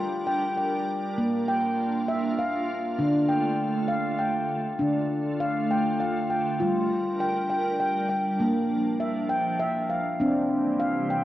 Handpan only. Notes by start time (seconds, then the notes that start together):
Already playing: G3 G5
0.27 G5
0.57 G5
1.18 A#3
1.48 G5
2.08 E5
2.39 F5
2.99 D3 D4
3.29 G5
3.88 F5
4.19 G5
4.79 D3 D4
5.40 F5
5.71 G5
6.00 F5
6.30 G5
6.60 G3 F4
7.20 G5
7.50 G5
7.80 G5
8.09 G5
8.40 A#3
9.00 E5
9.29 G5
9.60 E5
9.90 F5
10.20 C4 D4
10.79 F5
11.10 G5